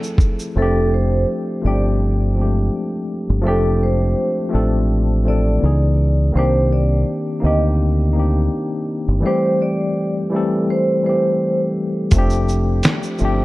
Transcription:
0.00 0.40 F3 medium
0.00 0.41 A3 medium
0.00 0.42 C4 medium
0.00 0.43 E4 medium
0.00 0.57 G#4 medium
0.00 0.47 A4 medium
0.00 shaker soft
0.18 kick medium
0.18 shaker soft
0.39 shaker medium
0.55 1.24 F1 loud
0.55 1.49 F3 medium
0.55 1.50 A3 medium
0.55 1.51 C4 medium
0.55 0.90 A4 medium
0.60 1.51 D4 medium
0.60 1.52 G4 loud
0.94 1.25 C5 medium
1.61 2.69 G1 medium
1.61 2.25 F3 medium
1.61 2.26 A3 medium
1.61 2.26 C4 medium
1.66 2.27 D4 medium
1.66 2.28 G4 medium
1.66 1.83 D5 medium
2.35 3.29 F3 medium
2.35 2.44 G#3 soft
2.35 3.31 C4 medium
2.40 3.33 A3 medium
2.40 3.31 D4 medium
2.40 3.32 G4 medium
3.30 3.46 G1 medium
3.42 4.14 F1 loud
3.42 4.37 F3 loud
3.42 4.38 A3 loud
3.42 4.38 C4 medium
3.47 4.39 D4 medium
3.47 4.40 G4 loud
3.47 3.78 A4 loud
3.83 4.35 C5 medium
4.49 5.13 F3 medium
4.49 5.14 A3 medium
4.49 5.15 C4 medium
4.54 5.58 A1 medium
4.54 5.16 D4 medium
4.54 5.17 A4 loud
5.23 5.61 F3 medium
5.23 5.61 A3 medium
5.23 5.62 C4 medium
5.28 5.63 D4 medium
5.28 5.64 A4 medium
5.28 6.31 D5 medium
5.59 6.24 C#3 medium
5.59 6.23 E3 medium
5.59 6.23 B3 medium
5.63 6.31 C#2 loud
5.63 6.25 D#4 medium
5.63 6.26 G#4 medium
6.32 7.03 C2 loud
6.32 7.26 D#3 medium
6.32 7.27 A#3 medium
6.32 7.28 C4 medium
6.37 7.29 D4 medium
6.37 7.30 G4 loud
6.37 6.68 C5 medium
6.73 7.04 D5 medium
7.40 8.47 D2 medium
7.40 8.04 A#3 medium
7.40 8.05 C4 medium
7.40 8.04 D#4 medium
7.45 8.06 D4 medium
7.45 8.07 G4 medium
7.45 7.62 D#5 medium
8.13 9.08 A#3 medium
8.13 9.09 C4 medium
8.13 9.07 D#4 medium
8.18 9.10 D4 medium
8.18 9.11 G4 medium
9.08 9.22 G1 medium
9.20 10.15 E3 loud
9.20 10.16 G3 medium
9.20 10.17 A3 medium
9.25 10.18 C4 medium
9.25 10.18 G4 loud
9.25 9.57 C5 loud
9.62 10.14 D5 medium
10.29 10.93 E3 medium
10.29 10.94 G3 medium
10.29 10.95 A3 medium
10.35 10.95 C4 medium
10.35 10.96 A4 loud
10.70 11.02 C5 medium
11.03 11.97 E3 medium
11.03 11.98 G3 medium
11.03 11.99 A3 medium
11.03 11.58 C5 medium
11.08 11.99 C4 medium
11.08 12.00 G4 medium
12.11 12.81 F1 loud
12.11 13.06 F3 loud
12.11 13.06 A3 loud
12.11 13.07 C4 medium
12.11 kick loud
12.11 closed hi-hat medium
12.11 shaker medium
12.17 13.08 D4 loud
12.17 13.09 G4 loud
12.30 shaker soft
12.49 shaker soft
12.83 snare loud
12.83 closed hi-hat medium
12.83 shaker medium
13.03 shaker soft
13.18 13.45 G1 medium
13.18 13.45 F3 medium
13.18 13.45 A3 medium
13.18 13.45 C4 medium
13.18 shaker soft
13.23 13.45 D4 medium
13.23 13.45 G4 loud

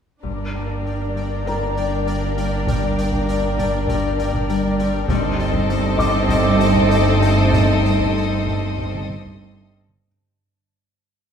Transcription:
0.23 5.05 G1 medium
0.23 5.06 G1 soft
0.23 0.54 G2 soft
0.23 5.06 G2 soft
0.23 5.05 A#3 soft
0.23 5.05 D4 soft
0.23 5.06 A#4 soft
0.23 5.05 D5 soft
0.23 5.06 D5 medium
0.23 5.05 G5 medium
0.23 taiko soft
0.55 0.83 G2 soft
0.84 1.13 G2 soft
1.14 1.44 G2 soft
1.45 1.74 G2 soft
1.45 3.25 A#4 soft
1.45 3.25 A#5 soft
1.76 2.36 G2 soft
2.05 4.48 G3 soft
2.37 2.66 G2 soft
2.67 2.97 G2 medium
2.67 taiko medium
2.98 3.27 G2 soft
3.12 taiko medium
3.28 3.57 G2 soft
3.58 3.88 G2 soft
3.58 taiko medium
3.88 4.18 G2 medium
3.88 taiko medium
4.19 4.79 G2 soft
4.33 taiko medium
4.50 5.12 G3 medium
4.80 5.09 G2 medium
5.07 10.01 G1 medium
5.07 9.81 G1 medium
5.07 9.81 G2 medium
5.07 5.38 G2 medium
5.07 9.71 A3 medium
5.07 9.80 C4 medium
5.07 9.70 D#4 medium
5.07 9.81 A4 medium
5.07 10.05 C5 medium
5.07 10.05 D#5 medium
5.07 9.81 D#5 medium
5.07 10.05 A5 medium
5.07 9.71 C6 medium
5.07 taiko medium
5.11 9.08 D6 medium
5.39 5.68 G2 medium
5.53 taiko medium
5.69 5.98 G2 medium
5.98 6.27 G2 medium
5.98 7.80 D#5 soft
5.98 7.81 D6 medium
5.98 taiko medium
6.28 6.58 G2 medium
6.28 9.71 D#6 medium
6.28 taiko medium
6.59 7.20 G2 soft
6.75 taiko medium
6.90 9.40 G3 soft
7.21 7.51 G2 soft
7.52 7.83 G2 medium
7.52 taiko medium
7.84 8.15 G2 soft
8.00 taiko medium
8.16 8.46 G2 soft
8.47 8.77 G2 soft
8.47 taiko medium
8.78 9.08 G2 soft
8.78 taiko medium
8.94 taiko mid soft
9.09 9.72 G2 soft
9.09 taiko mid soft
9.26 taiko medium
9.41 10.07 G3 soft
9.73 10.07 G2 soft
9.89 taiko mid soft

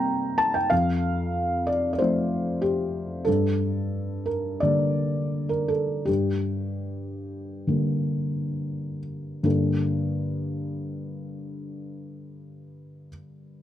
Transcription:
0.00 0.67 C3 medium
0.00 0.67 G3 soft
0.00 0.67 A#3 soft
0.00 0.67 C4 soft
0.00 0.74 D#5 medium
0.00 0.54 G5 medium
0.00 0.39 A#5 medium
0.38 0.54 A5 medium
0.54 0.71 G5 medium
0.70 3.23 F2 medium
0.70 1.67 F5 medium
1.67 1.91 D5 medium
1.93 1.99 D5 soft
1.98 3.23 F3 soft
1.98 3.24 A3 soft
1.98 3.24 C4 soft
1.98 2.62 C5 medium
2.62 3.26 G4 medium
3.25 6.04 G2 soft
3.25 4.26 A4 medium
4.26 4.61 A#4 medium
4.60 6.04 D3 soft
4.60 6.04 G3 soft
4.60 6.04 A#3 soft
4.60 5.50 D5 medium
5.49 5.69 A#4 soft
5.68 6.07 A4 medium
6.05 9.40 G2 soft
6.05 8.99 G4 medium
7.67 9.39 D3 soft
7.67 9.40 G3 soft
7.67 9.40 A#3 soft
9.43 13.08 G2 soft
9.43 13.08 D3 soft
9.43 13.08 A#3 soft
9.43 13.08 D4 soft
9.43 13.08 G4 soft
9.43 13.09 A4 soft

